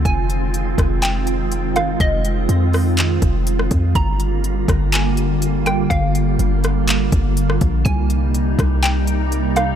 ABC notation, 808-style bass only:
X:1
M:4/4
L:1/8
Q:1/4=123
K:Fdor
V:1 name="808-style bass" clef=bass
F,,,3 F,,,4- F,,, | F,,,2 F,,3 F,,,2 F,, | G,,,3 G,,,4- G,,, | G,,,2 G,,,3 G,,,2 B,,, |
C,,3 C,,4- C,, |]